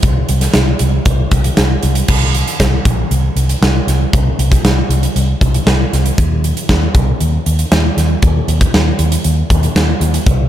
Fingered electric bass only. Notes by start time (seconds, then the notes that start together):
0.03 C2
0.29 C2
0.54 C2
0.80 C2
1.06 C2
1.32 C2
1.58 C2
1.83 C2
2.08 C2
2.60 C2
2.85 A#1
3.11 C2
3.36 C2
3.61 C2
3.87 C2
4.13 C2
4.39 C2
4.63 C2
4.89 C2
5.16 C2
5.41 C2
5.66 C2
5.93 C2
6.18 D#2
6.69 D#2
6.95 C2
7.21 D#2
7.46 D#2
7.71 D#2
7.97 D#2
8.22 D#2
8.48 D#2
8.74 D#2
8.99 D#2
9.25 D#2
9.50 D#2
9.75 D#2
10.00 D#2
10.27 C2